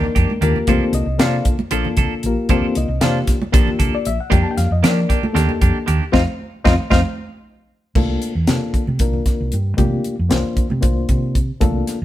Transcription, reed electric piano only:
0.00 0.42 A#3 medium
0.00 0.45 D4 medium
0.00 0.45 D#4 medium
0.00 0.42 A#4 medium
0.43 0.67 A#3 medium
0.43 0.67 F4 medium
0.43 0.68 G4 medium
0.43 0.68 A#4 medium
0.68 1.04 A#3 medium
0.68 0.94 C4 medium
0.68 1.04 D4 medium
0.68 1.05 F4 medium
0.68 0.94 G4 medium
0.68 1.05 A4 medium
0.68 0.94 C5 medium
0.94 1.20 D#4 medium
0.94 1.20 D#5 medium
1.18 1.55 A#3 medium
1.18 1.56 D4 medium
1.18 1.56 F4 medium
1.18 1.56 A4 medium
1.18 1.46 C5 medium
1.18 1.46 D5 medium
1.18 1.46 F5 loud
1.71 2.25 A#3 medium
1.71 2.26 D4 medium
1.71 2.25 F4 medium
1.71 2.27 A4 medium
2.26 2.49 A#3 medium
2.26 2.50 F4 medium
2.26 2.50 G4 medium
2.26 2.51 A#4 medium
2.50 2.86 A#3 medium
2.50 2.76 C4 medium
2.50 2.86 D4 medium
2.50 2.87 F4 medium
2.50 2.76 G4 medium
2.50 2.76 A4 medium
2.50 2.76 C5 medium
2.77 3.03 D#4 medium
2.77 3.02 D#5 medium
3.01 3.38 A#3 medium
3.01 3.38 D4 medium
3.01 3.38 F4 medium
3.01 3.38 G4 medium
3.01 3.19 C5 medium
3.01 3.18 D5 medium
3.01 3.18 F5 loud
3.53 4.08 A#3 medium
3.53 4.08 D4 medium
3.53 4.08 F4 medium
3.53 4.08 G4 medium
3.95 4.06 D5 medium
4.07 4.19 E5 loud
4.20 4.32 F#5 medium
4.30 4.67 A#3 medium
4.30 4.67 D4 medium
4.30 4.68 D#4 medium
4.30 4.68 G4 medium
4.30 4.41 G5 medium
4.43 4.50 A5 medium
4.51 4.59 G5 medium
4.57 4.70 F5 medium
4.72 4.84 D#5 medium
4.83 5.19 A#3 medium
4.83 5.20 D4 medium
4.83 5.20 D#4 medium
4.83 5.20 A#4 medium
4.83 5.22 D5 medium
5.25 5.33 A4 medium
5.33 5.89 A#3 medium
5.33 5.89 D4 medium
5.33 5.89 D#4 medium
5.33 6.10 G4 medium
5.33 5.90 A4 medium
6.12 6.21 C4 loud
6.12 6.21 D#4 medium
6.12 6.21 F4 loud
6.12 6.22 C5 loud
6.12 6.22 D#5 loud
6.12 6.22 F5 loud
6.65 6.73 C4 loud
6.65 6.74 D#4 medium
6.65 6.74 F4 loud
6.65 6.73 C5 loud
6.65 6.73 D#5 loud
6.65 6.74 F5 loud
6.90 6.99 C4 medium
6.90 6.99 D#4 medium
6.90 6.99 F4 medium
6.90 7.00 C5 loud
6.90 6.99 D#5 loud
6.90 7.00 F5 loud
7.95 8.32 A#3 medium
7.95 8.32 D4 medium
7.95 8.32 F4 medium
7.95 8.32 A4 medium
8.47 8.84 A#3 medium
8.47 8.84 D4 medium
8.47 8.84 F4 medium
8.47 8.84 A4 medium
9.00 9.55 A#3 medium
9.00 9.55 D4 medium
9.00 9.55 F4 medium
9.00 9.55 A#4 medium
9.77 10.14 A#3 medium
9.77 10.15 D4 medium
9.77 10.15 F4 medium
9.77 10.15 G4 loud
10.29 10.66 A#3 medium
10.29 10.67 D4 medium
10.29 10.67 F4 medium
10.29 10.67 C5 medium
10.81 11.37 A#3 medium
10.81 11.37 D4 medium
10.81 11.37 F4 medium
10.81 11.37 C5 medium
11.61 11.97 A#3 medium
11.61 11.97 D4 medium
11.61 11.98 F4 medium
11.61 11.98 A4 loud

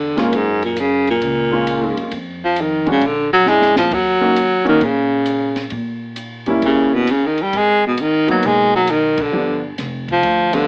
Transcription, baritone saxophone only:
0.00 0.22 D3 medium
0.20 0.37 A#2 medium
0.35 0.64 G#2 medium
0.65 0.82 A#2 medium
0.80 1.09 C#3 medium
1.10 2.09 A#2 medium
2.45 2.63 F3 medium
2.61 2.89 D#3 medium
2.91 3.08 C#3 medium
3.06 3.33 D3 medium
3.33 3.50 F#3 medium
3.49 3.77 G#3 medium
3.78 3.95 F3 medium
3.94 4.68 F#3 medium
4.69 4.85 D#3 medium
4.84 5.73 C#3 medium
6.65 6.96 C#3 medium
6.94 7.13 B2 medium
7.11 7.28 C#3 medium
7.26 7.44 D#3 medium
7.43 7.59 G3 medium
7.57 7.85 G#3 medium
7.87 8.02 B2 medium
8.01 8.29 D#3 medium
8.31 8.48 F#3 medium
8.47 8.75 G#3 medium
8.76 8.92 F#3 medium
8.91 9.23 D#3 medium
9.22 9.65 D3 medium
10.12 10.56 F3 medium
10.55 10.67 D3 medium

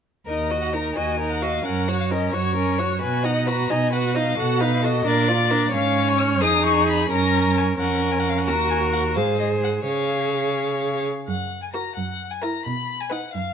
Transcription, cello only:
0.28 0.88 D#2 soft
0.97 1.57 D#2 soft
1.65 2.26 F#2 soft
2.34 2.94 F#2 soft
3.01 3.62 B2 soft
3.70 4.30 B2 soft
4.38 4.98 B2 medium
5.06 5.66 A#2 medium
5.73 6.44 G#2 medium
6.42 7.10 F2 soft
7.11 7.78 F#2 medium
7.79 8.49 F2 soft
8.47 9.18 D#2 soft
9.17 9.87 G#2 soft
9.87 11.05 C#3 soft
11.28 11.83 F#2 soft
11.97 12.52 F#2 soft
12.66 13.20 B2 medium
13.34 13.54 F#2 soft

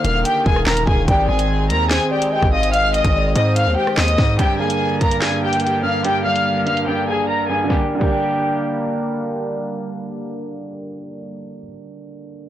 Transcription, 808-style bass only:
0.04 0.24 D#1 loud
0.46 0.66 D#1 loud
0.67 0.86 D#1 loud
0.87 1.07 D#1 loud
1.08 1.28 G#1 loud
1.29 1.71 G#1 loud
1.70 1.99 D#2 loud
2.42 3.02 G#1 loud
3.04 3.34 G#1 loud
3.36 3.68 G#2 loud
3.67 3.76 D#2 loud
3.98 4.17 D#2 loud
4.18 4.38 G#2 loud

